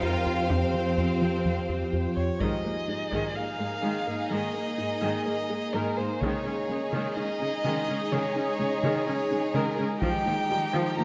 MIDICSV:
0, 0, Header, 1, 12, 480
1, 0, Start_track
1, 0, Tempo, 476190
1, 507, Time_signature, 4, 2, 24, 8
1, 11130, End_track
2, 0, Start_track
2, 0, Title_t, "Violin section"
2, 0, Program_c, 0, 48
2, 0, Note_on_c, 0, 79, 51
2, 2186, Note_off_c, 0, 79, 0
2, 11130, End_track
3, 0, Start_track
3, 0, Title_t, "Violin"
3, 0, Program_c, 1, 40
3, 2174, Note_on_c, 1, 73, 47
3, 2429, Note_on_c, 1, 75, 43
3, 2445, Note_off_c, 1, 73, 0
3, 3381, Note_on_c, 1, 77, 51
3, 3396, Note_off_c, 1, 75, 0
3, 4334, Note_off_c, 1, 77, 0
3, 4340, Note_on_c, 1, 75, 50
3, 5284, Note_off_c, 1, 75, 0
3, 5313, Note_on_c, 1, 75, 49
3, 5781, Note_on_c, 1, 70, 45
3, 5796, Note_off_c, 1, 75, 0
3, 6016, Note_on_c, 1, 72, 46
3, 6031, Note_off_c, 1, 70, 0
3, 6256, Note_on_c, 1, 73, 45
3, 6271, Note_off_c, 1, 72, 0
3, 7222, Note_off_c, 1, 73, 0
3, 7227, Note_on_c, 1, 75, 60
3, 8192, Note_on_c, 1, 73, 61
3, 8208, Note_off_c, 1, 75, 0
3, 9141, Note_off_c, 1, 73, 0
3, 9147, Note_on_c, 1, 73, 65
3, 9628, Note_on_c, 1, 70, 54
3, 9644, Note_off_c, 1, 73, 0
3, 9868, Note_off_c, 1, 70, 0
3, 10092, Note_on_c, 1, 79, 70
3, 11019, Note_off_c, 1, 79, 0
3, 11065, Note_on_c, 1, 82, 72
3, 11130, Note_off_c, 1, 82, 0
3, 11130, End_track
4, 0, Start_track
4, 0, Title_t, "Violin section"
4, 0, Program_c, 2, 48
4, 0, Note_on_c, 2, 72, 52
4, 0, Note_on_c, 2, 77, 59
4, 2183, Note_off_c, 2, 77, 0
4, 2186, Note_off_c, 2, 72, 0
4, 2422, Note_on_c, 2, 63, 36
4, 2425, Note_on_c, 2, 68, 33
4, 6225, Note_off_c, 2, 63, 0
4, 6226, Note_off_c, 2, 68, 0
4, 6256, Note_on_c, 2, 68, 43
4, 6262, Note_on_c, 2, 63, 42
4, 10061, Note_off_c, 2, 68, 0
4, 10064, Note_off_c, 2, 63, 0
4, 10101, Note_on_c, 2, 63, 53
4, 10105, Note_on_c, 2, 67, 48
4, 11130, Note_off_c, 2, 63, 0
4, 11130, Note_off_c, 2, 67, 0
4, 11130, End_track
5, 0, Start_track
5, 0, Title_t, "Synth drone"
5, 0, Program_c, 3, 95
5, 0, Note_on_c, 3, 53, 59
5, 0, Note_on_c, 3, 65, 56
5, 0, Note_on_c, 3, 67, 61
5, 0, Note_on_c, 3, 72, 58
5, 2388, Note_off_c, 3, 53, 0
5, 2427, Note_on_c, 3, 63, 52
5, 2427, Note_on_c, 3, 75, 48
5, 2428, Note_on_c, 3, 58, 52
5, 2428, Note_on_c, 3, 68, 47
5, 2429, Note_off_c, 3, 67, 0
5, 2431, Note_off_c, 3, 72, 0
5, 2432, Note_off_c, 3, 65, 0
5, 6227, Note_off_c, 3, 58, 0
5, 6227, Note_off_c, 3, 63, 0
5, 6227, Note_off_c, 3, 75, 0
5, 6228, Note_off_c, 3, 68, 0
5, 6260, Note_on_c, 3, 75, 54
5, 6262, Note_on_c, 3, 63, 51
5, 6266, Note_on_c, 3, 56, 46
5, 6267, Note_on_c, 3, 68, 51
5, 10064, Note_off_c, 3, 63, 0
5, 10064, Note_off_c, 3, 75, 0
5, 10067, Note_off_c, 3, 68, 0
5, 10098, Note_on_c, 3, 53, 58
5, 10098, Note_on_c, 3, 63, 62
5, 10099, Note_on_c, 3, 70, 53
5, 10100, Note_on_c, 3, 75, 57
5, 10107, Note_off_c, 3, 56, 0
5, 11130, Note_off_c, 3, 53, 0
5, 11130, Note_off_c, 3, 63, 0
5, 11130, Note_off_c, 3, 70, 0
5, 11130, Note_off_c, 3, 75, 0
5, 11130, End_track
6, 0, Start_track
6, 0, Title_t, "Synth arpeggio sound"
6, 0, Program_c, 4, 84
6, 29, Note_on_c, 4, 67, 44
6, 173, Note_off_c, 4, 67, 0
6, 515, Note_on_c, 4, 53, 63
6, 657, Note_off_c, 4, 53, 0
6, 990, Note_on_c, 4, 60, 45
6, 1133, Note_off_c, 4, 60, 0
6, 1234, Note_on_c, 4, 65, 51
6, 1376, Note_off_c, 4, 65, 0
6, 1471, Note_on_c, 4, 53, 65
6, 1614, Note_off_c, 4, 53, 0
6, 1712, Note_on_c, 4, 67, 46
6, 1855, Note_off_c, 4, 67, 0
6, 1947, Note_on_c, 4, 67, 50
6, 2091, Note_off_c, 4, 67, 0
6, 2427, Note_on_c, 4, 56, 61
6, 2571, Note_off_c, 4, 56, 0
6, 2666, Note_on_c, 4, 70, 39
6, 2810, Note_off_c, 4, 70, 0
6, 2904, Note_on_c, 4, 63, 42
6, 3049, Note_off_c, 4, 63, 0
6, 3146, Note_on_c, 4, 56, 60
6, 3290, Note_off_c, 4, 56, 0
6, 3380, Note_on_c, 4, 70, 46
6, 3526, Note_off_c, 4, 70, 0
6, 3621, Note_on_c, 4, 68, 45
6, 3767, Note_off_c, 4, 68, 0
6, 3860, Note_on_c, 4, 56, 66
6, 4006, Note_off_c, 4, 56, 0
6, 4104, Note_on_c, 4, 70, 43
6, 4249, Note_off_c, 4, 70, 0
6, 4341, Note_on_c, 4, 56, 63
6, 4487, Note_off_c, 4, 56, 0
6, 4575, Note_on_c, 4, 70, 39
6, 4722, Note_off_c, 4, 70, 0
6, 4820, Note_on_c, 4, 63, 46
6, 4966, Note_off_c, 4, 63, 0
6, 5064, Note_on_c, 4, 56, 63
6, 5209, Note_off_c, 4, 56, 0
6, 5302, Note_on_c, 4, 70, 50
6, 5448, Note_off_c, 4, 70, 0
6, 5542, Note_on_c, 4, 68, 46
6, 5688, Note_off_c, 4, 68, 0
6, 5787, Note_on_c, 4, 56, 69
6, 5931, Note_off_c, 4, 56, 0
6, 6023, Note_on_c, 4, 70, 43
6, 6169, Note_off_c, 4, 70, 0
6, 6261, Note_on_c, 4, 49, 71
6, 6407, Note_off_c, 4, 49, 0
6, 6500, Note_on_c, 4, 63, 42
6, 6646, Note_off_c, 4, 63, 0
6, 6746, Note_on_c, 4, 56, 46
6, 6890, Note_off_c, 4, 56, 0
6, 6980, Note_on_c, 4, 49, 63
6, 7126, Note_off_c, 4, 49, 0
6, 7225, Note_on_c, 4, 63, 49
6, 7369, Note_off_c, 4, 63, 0
6, 7460, Note_on_c, 4, 61, 46
6, 7606, Note_off_c, 4, 61, 0
6, 7706, Note_on_c, 4, 49, 67
6, 7850, Note_off_c, 4, 49, 0
6, 7944, Note_on_c, 4, 63, 49
6, 8089, Note_off_c, 4, 63, 0
6, 8188, Note_on_c, 4, 49, 68
6, 8332, Note_off_c, 4, 49, 0
6, 8425, Note_on_c, 4, 63, 41
6, 8570, Note_off_c, 4, 63, 0
6, 8661, Note_on_c, 4, 56, 47
6, 8807, Note_off_c, 4, 56, 0
6, 8903, Note_on_c, 4, 49, 72
6, 9049, Note_off_c, 4, 49, 0
6, 9141, Note_on_c, 4, 63, 53
6, 9287, Note_off_c, 4, 63, 0
6, 9383, Note_on_c, 4, 61, 43
6, 9529, Note_off_c, 4, 61, 0
6, 9620, Note_on_c, 4, 49, 72
6, 9766, Note_off_c, 4, 49, 0
6, 9861, Note_on_c, 4, 63, 52
6, 10007, Note_off_c, 4, 63, 0
6, 10097, Note_on_c, 4, 51, 72
6, 10244, Note_off_c, 4, 51, 0
6, 10339, Note_on_c, 4, 63, 38
6, 10485, Note_off_c, 4, 63, 0
6, 10579, Note_on_c, 4, 55, 46
6, 10726, Note_off_c, 4, 55, 0
6, 10827, Note_on_c, 4, 51, 68
6, 10971, Note_off_c, 4, 51, 0
6, 11062, Note_on_c, 4, 63, 49
6, 11130, Note_off_c, 4, 63, 0
6, 11130, End_track
7, 0, Start_track
7, 0, Title_t, "French horn section"
7, 0, Program_c, 5, 60
7, 28, Note_on_c, 5, 60, 41
7, 498, Note_off_c, 5, 60, 0
7, 500, Note_on_c, 5, 53, 41
7, 2184, Note_off_c, 5, 53, 0
7, 11130, End_track
8, 0, Start_track
8, 0, Title_t, "Viola section"
8, 0, Program_c, 6, 48
8, 36, Note_on_c, 6, 70, 41
8, 502, Note_off_c, 6, 70, 0
8, 503, Note_on_c, 6, 72, 37
8, 2151, Note_off_c, 6, 72, 0
8, 2428, Note_on_c, 6, 51, 39
8, 2428, Note_on_c, 6, 56, 38
8, 2651, Note_off_c, 6, 51, 0
8, 2651, Note_off_c, 6, 56, 0
8, 2671, Note_on_c, 6, 56, 24
8, 2671, Note_on_c, 6, 58, 24
8, 2751, Note_off_c, 6, 58, 0
8, 2752, Note_off_c, 6, 56, 0
8, 2907, Note_on_c, 6, 56, 30
8, 2910, Note_off_c, 6, 56, 0
8, 2910, Note_on_c, 6, 56, 25
8, 2990, Note_off_c, 6, 56, 0
8, 3148, Note_on_c, 6, 51, 35
8, 3150, Note_on_c, 6, 56, 40
8, 3371, Note_off_c, 6, 51, 0
8, 3372, Note_off_c, 6, 56, 0
8, 3382, Note_on_c, 6, 56, 29
8, 3383, Note_on_c, 6, 58, 30
8, 3463, Note_off_c, 6, 56, 0
8, 3464, Note_off_c, 6, 58, 0
8, 3623, Note_on_c, 6, 56, 30
8, 3624, Note_off_c, 6, 56, 0
8, 3624, Note_on_c, 6, 56, 30
8, 3705, Note_off_c, 6, 56, 0
8, 3862, Note_on_c, 6, 51, 36
8, 3862, Note_on_c, 6, 56, 37
8, 4088, Note_off_c, 6, 51, 0
8, 4088, Note_off_c, 6, 56, 0
8, 4104, Note_on_c, 6, 58, 27
8, 4107, Note_on_c, 6, 56, 33
8, 4185, Note_off_c, 6, 58, 0
8, 4187, Note_off_c, 6, 56, 0
8, 4342, Note_on_c, 6, 56, 38
8, 4347, Note_on_c, 6, 51, 38
8, 4568, Note_off_c, 6, 56, 0
8, 4570, Note_off_c, 6, 51, 0
8, 4585, Note_on_c, 6, 58, 34
8, 4588, Note_on_c, 6, 56, 28
8, 4666, Note_off_c, 6, 58, 0
8, 4668, Note_off_c, 6, 56, 0
8, 4834, Note_on_c, 6, 56, 28
8, 4915, Note_off_c, 6, 56, 0
8, 5066, Note_on_c, 6, 56, 44
8, 5071, Note_on_c, 6, 51, 39
8, 5290, Note_off_c, 6, 56, 0
8, 5293, Note_off_c, 6, 51, 0
8, 5305, Note_on_c, 6, 56, 31
8, 5308, Note_on_c, 6, 58, 34
8, 5385, Note_off_c, 6, 56, 0
8, 5388, Note_off_c, 6, 58, 0
8, 5547, Note_on_c, 6, 56, 35
8, 5549, Note_off_c, 6, 56, 0
8, 5549, Note_on_c, 6, 56, 32
8, 5629, Note_off_c, 6, 56, 0
8, 5788, Note_on_c, 6, 56, 40
8, 5790, Note_on_c, 6, 51, 36
8, 6011, Note_off_c, 6, 56, 0
8, 6012, Note_off_c, 6, 51, 0
8, 6028, Note_on_c, 6, 56, 32
8, 6028, Note_on_c, 6, 58, 33
8, 6108, Note_off_c, 6, 58, 0
8, 6109, Note_off_c, 6, 56, 0
8, 6268, Note_on_c, 6, 56, 46
8, 6271, Note_on_c, 6, 51, 44
8, 6491, Note_off_c, 6, 56, 0
8, 6492, Note_off_c, 6, 51, 0
8, 6503, Note_on_c, 6, 56, 31
8, 6507, Note_on_c, 6, 61, 30
8, 6584, Note_off_c, 6, 56, 0
8, 6587, Note_off_c, 6, 61, 0
8, 6754, Note_on_c, 6, 56, 34
8, 6757, Note_off_c, 6, 56, 0
8, 6757, Note_on_c, 6, 56, 32
8, 6837, Note_off_c, 6, 56, 0
8, 6990, Note_on_c, 6, 56, 43
8, 6991, Note_on_c, 6, 51, 49
8, 7212, Note_off_c, 6, 56, 0
8, 7213, Note_off_c, 6, 51, 0
8, 7236, Note_on_c, 6, 56, 36
8, 7237, Note_on_c, 6, 61, 35
8, 7317, Note_off_c, 6, 56, 0
8, 7318, Note_off_c, 6, 61, 0
8, 7471, Note_on_c, 6, 56, 33
8, 7552, Note_off_c, 6, 56, 0
8, 7708, Note_on_c, 6, 56, 47
8, 7709, Note_on_c, 6, 51, 48
8, 7931, Note_off_c, 6, 56, 0
8, 7932, Note_off_c, 6, 51, 0
8, 7956, Note_on_c, 6, 61, 38
8, 7959, Note_on_c, 6, 56, 40
8, 8036, Note_off_c, 6, 61, 0
8, 8040, Note_off_c, 6, 56, 0
8, 8190, Note_on_c, 6, 51, 42
8, 8190, Note_on_c, 6, 56, 42
8, 8412, Note_off_c, 6, 51, 0
8, 8412, Note_off_c, 6, 56, 0
8, 8427, Note_on_c, 6, 56, 39
8, 8427, Note_on_c, 6, 61, 35
8, 8507, Note_off_c, 6, 56, 0
8, 8507, Note_off_c, 6, 61, 0
8, 8667, Note_on_c, 6, 56, 34
8, 8670, Note_off_c, 6, 56, 0
8, 8670, Note_on_c, 6, 56, 36
8, 8750, Note_off_c, 6, 56, 0
8, 8908, Note_on_c, 6, 51, 47
8, 8910, Note_on_c, 6, 56, 50
8, 9131, Note_off_c, 6, 51, 0
8, 9132, Note_off_c, 6, 56, 0
8, 9142, Note_on_c, 6, 61, 36
8, 9143, Note_on_c, 6, 56, 43
8, 9223, Note_off_c, 6, 61, 0
8, 9224, Note_off_c, 6, 56, 0
8, 9386, Note_on_c, 6, 56, 44
8, 9387, Note_off_c, 6, 56, 0
8, 9387, Note_on_c, 6, 56, 39
8, 9468, Note_off_c, 6, 56, 0
8, 9619, Note_on_c, 6, 51, 46
8, 9619, Note_on_c, 6, 56, 46
8, 9843, Note_off_c, 6, 56, 0
8, 9846, Note_off_c, 6, 51, 0
8, 9853, Note_on_c, 6, 61, 40
8, 9855, Note_on_c, 6, 56, 45
8, 9933, Note_off_c, 6, 61, 0
8, 9935, Note_off_c, 6, 56, 0
8, 10102, Note_on_c, 6, 53, 54
8, 10105, Note_off_c, 6, 53, 0
8, 10105, Note_on_c, 6, 53, 58
8, 10329, Note_off_c, 6, 53, 0
8, 10350, Note_on_c, 6, 53, 35
8, 10350, Note_on_c, 6, 58, 40
8, 10430, Note_off_c, 6, 53, 0
8, 10431, Note_off_c, 6, 58, 0
8, 10583, Note_on_c, 6, 55, 43
8, 10586, Note_on_c, 6, 53, 39
8, 10663, Note_off_c, 6, 55, 0
8, 10666, Note_off_c, 6, 53, 0
8, 10816, Note_on_c, 6, 53, 57
8, 10817, Note_off_c, 6, 53, 0
8, 10817, Note_on_c, 6, 53, 62
8, 11045, Note_off_c, 6, 53, 0
8, 11070, Note_on_c, 6, 53, 40
8, 11070, Note_on_c, 6, 58, 48
8, 11130, Note_off_c, 6, 53, 0
8, 11130, Note_off_c, 6, 58, 0
8, 11130, End_track
9, 0, Start_track
9, 0, Title_t, "Cello section"
9, 0, Program_c, 7, 48
9, 27, Note_on_c, 7, 65, 49
9, 504, Note_on_c, 7, 60, 50
9, 507, Note_off_c, 7, 65, 0
9, 2186, Note_off_c, 7, 60, 0
9, 2416, Note_on_c, 7, 44, 39
9, 2497, Note_off_c, 7, 44, 0
9, 2653, Note_on_c, 7, 44, 27
9, 2734, Note_off_c, 7, 44, 0
9, 2899, Note_on_c, 7, 44, 29
9, 2980, Note_off_c, 7, 44, 0
9, 3137, Note_on_c, 7, 44, 34
9, 3217, Note_off_c, 7, 44, 0
9, 3373, Note_on_c, 7, 44, 27
9, 3453, Note_off_c, 7, 44, 0
9, 3618, Note_on_c, 7, 44, 24
9, 3699, Note_off_c, 7, 44, 0
9, 3857, Note_on_c, 7, 44, 34
9, 3938, Note_off_c, 7, 44, 0
9, 4098, Note_on_c, 7, 44, 28
9, 4179, Note_off_c, 7, 44, 0
9, 4339, Note_on_c, 7, 44, 42
9, 4420, Note_off_c, 7, 44, 0
9, 4580, Note_on_c, 7, 44, 26
9, 4660, Note_off_c, 7, 44, 0
9, 4823, Note_on_c, 7, 44, 27
9, 4904, Note_off_c, 7, 44, 0
9, 5059, Note_on_c, 7, 44, 43
9, 5140, Note_off_c, 7, 44, 0
9, 5299, Note_on_c, 7, 44, 28
9, 5379, Note_off_c, 7, 44, 0
9, 5545, Note_on_c, 7, 44, 30
9, 5625, Note_off_c, 7, 44, 0
9, 5786, Note_on_c, 7, 44, 43
9, 5867, Note_off_c, 7, 44, 0
9, 6030, Note_on_c, 7, 44, 29
9, 6111, Note_off_c, 7, 44, 0
9, 6266, Note_on_c, 7, 49, 41
9, 6346, Note_off_c, 7, 49, 0
9, 6509, Note_on_c, 7, 49, 33
9, 6589, Note_off_c, 7, 49, 0
9, 6750, Note_on_c, 7, 49, 30
9, 6831, Note_off_c, 7, 49, 0
9, 6991, Note_on_c, 7, 49, 42
9, 7072, Note_off_c, 7, 49, 0
9, 7234, Note_on_c, 7, 49, 35
9, 7314, Note_off_c, 7, 49, 0
9, 7473, Note_on_c, 7, 49, 33
9, 7554, Note_off_c, 7, 49, 0
9, 7711, Note_on_c, 7, 49, 43
9, 7792, Note_off_c, 7, 49, 0
9, 7954, Note_on_c, 7, 49, 31
9, 8035, Note_off_c, 7, 49, 0
9, 8191, Note_on_c, 7, 49, 52
9, 8271, Note_off_c, 7, 49, 0
9, 8429, Note_on_c, 7, 49, 33
9, 8509, Note_off_c, 7, 49, 0
9, 8661, Note_on_c, 7, 49, 39
9, 8741, Note_off_c, 7, 49, 0
9, 8904, Note_on_c, 7, 49, 49
9, 8985, Note_off_c, 7, 49, 0
9, 9148, Note_on_c, 7, 49, 34
9, 9228, Note_off_c, 7, 49, 0
9, 9387, Note_on_c, 7, 49, 34
9, 9468, Note_off_c, 7, 49, 0
9, 9629, Note_on_c, 7, 49, 47
9, 9710, Note_off_c, 7, 49, 0
9, 9873, Note_on_c, 7, 49, 34
9, 9953, Note_off_c, 7, 49, 0
9, 10105, Note_on_c, 7, 51, 53
9, 10186, Note_off_c, 7, 51, 0
9, 10346, Note_on_c, 7, 51, 43
9, 10426, Note_off_c, 7, 51, 0
9, 10591, Note_on_c, 7, 51, 39
9, 10671, Note_off_c, 7, 51, 0
9, 10827, Note_on_c, 7, 51, 58
9, 10908, Note_off_c, 7, 51, 0
9, 11069, Note_on_c, 7, 51, 39
9, 11130, Note_off_c, 7, 51, 0
9, 11130, End_track
10, 0, Start_track
10, 0, Title_t, "Analog synth bass"
10, 0, Program_c, 8, 38
10, 25, Note_on_c, 8, 41, 47
10, 170, Note_off_c, 8, 41, 0
10, 267, Note_on_c, 8, 41, 48
10, 411, Note_off_c, 8, 41, 0
10, 505, Note_on_c, 8, 41, 64
10, 650, Note_off_c, 8, 41, 0
10, 746, Note_on_c, 8, 53, 47
10, 890, Note_off_c, 8, 53, 0
10, 985, Note_on_c, 8, 41, 53
10, 1130, Note_off_c, 8, 41, 0
10, 1225, Note_on_c, 8, 53, 54
10, 1370, Note_off_c, 8, 53, 0
10, 1464, Note_on_c, 8, 41, 62
10, 1609, Note_off_c, 8, 41, 0
10, 1707, Note_on_c, 8, 41, 43
10, 1851, Note_off_c, 8, 41, 0
10, 1946, Note_on_c, 8, 41, 51
10, 2090, Note_off_c, 8, 41, 0
10, 2186, Note_on_c, 8, 41, 44
10, 2331, Note_off_c, 8, 41, 0
10, 11130, End_track
11, 0, Start_track
11, 0, Title_t, "Double bass section"
11, 0, Program_c, 10, 48
11, 0, Note_on_c, 10, 41, 52
11, 2185, Note_off_c, 10, 41, 0
11, 11130, End_track
12, 0, Start_track
12, 0, Title_t, "Taiko and cinematic ensemble drums"
12, 2424, Note_on_c, 9, 41, 39
12, 2525, Note_off_c, 9, 41, 0
12, 3146, Note_on_c, 9, 41, 22
12, 3246, Note_off_c, 9, 41, 0
12, 6267, Note_on_c, 9, 41, 39
12, 6368, Note_off_c, 9, 41, 0
12, 10100, Note_on_c, 9, 41, 45
12, 10200, Note_off_c, 9, 41, 0
12, 11130, End_track
0, 0, End_of_file